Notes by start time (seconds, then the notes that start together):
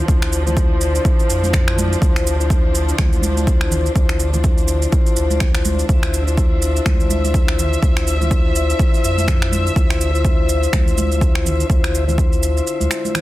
Already playing: D3 F3 D4
0.08 D2 E4 F4 C5, kick, shaker
0.22 finger snap, shaker
0.33 shaker
0.46 E4 F4 C5, high conga, low conga, shaker
0.57 kick, shaker
0.81 shaker
0.95 shaker
1.05 kick, shaker
1.20 shaker
1.30 F2, shaker
1.43 high conga, shaker
1.53 finger snap, kick, low conga, shaker
1.68 finger snap
1.78 high conga, shaker
1.93 shaker
2.02 D2 E4 F4 C5, kick, shaker
2.16 finger snap, shaker
2.27 shaker
2.40 E4 F4 C5, shaker
2.50 kick, shaker
2.75 shaker
2.89 shaker
2.98 D2, finger snap, kick, high conga, low conga, shaker
3.13 shaker
3.22 high conga, shaker
3.36 high conga, shaker
3.47 kick, shaker
3.61 finger snap
3.71 low conga, shaker
3.86 shaker
3.95 D2 E4 F4 C5, kick, shaker
4.09 finger snap, shaker
4.20 shaker
4.33 E4 F4 C5, high conga, low conga, shaker
4.44 kick, shaker
4.58 shaker
4.68 shaker
4.82 shaker
4.92 kick, shaker
5.06 shaker
5.16 D2, shaker
5.30 high conga, shaker
5.40 finger snap, kick, low conga, shaker
5.54 E4 F4 C5, finger snap, shaker
5.65 high conga, shaker
5.79 shaker
5.89 D2 E4 F4 C5 E5, kick, shaker
6.03 finger snap, shaker
6.14 shaker
6.27 E4 F4 C5, shaker
6.38 kick, shaker
6.62 shaker
6.76 shaker
6.85 D2, finger snap, kick, high conga, low conga, shaker
7.00 shaker
7.10 high conga, shaker
7.24 high conga, shaker
7.34 kick, shaker
7.48 finger snap
7.59 low conga, shaker
7.73 shaker
7.82 D2 E4 F4 C5, kick, shaker
7.97 finger snap, shaker
8.07 shaker
8.21 E4 F4 C5, high conga, low conga, shaker
8.31 kick, shaker
8.56 shaker
8.70 shaker
8.79 kick, shaker
8.94 shaker
9.04 F2, shaker
9.17 high conga, shaker
9.28 finger snap, kick, low conga, shaker
9.42 finger snap
9.52 high conga, shaker
9.67 shaker
9.76 D2 E4 F4 C5, kick, shaker
9.90 finger snap, shaker
10.01 shaker
10.14 E4 F4 C5, shaker
10.25 kick, shaker
10.49 shaker
10.63 shaker
10.73 D2, finger snap, kick, high conga, low conga, shaker
10.88 shaker
10.97 high conga, shaker
11.11 high conga, shaker
11.21 kick, shaker
11.35 finger snap
11.45 low conga, shaker
11.60 shaker
11.70 D2 E4 F4 C5, kick, shaker
11.84 finger snap, shaker
11.95 shaker
12.07 E4 F4 C5, high conga, low conga, shaker
12.18 kick, shaker
12.33 shaker
12.43 shaker
12.57 shaker
12.67 shaker
12.80 D2, high conga, shaker
12.91 finger snap, shaker
13.05 high conga, shaker
13.15 finger snap, low conga, shaker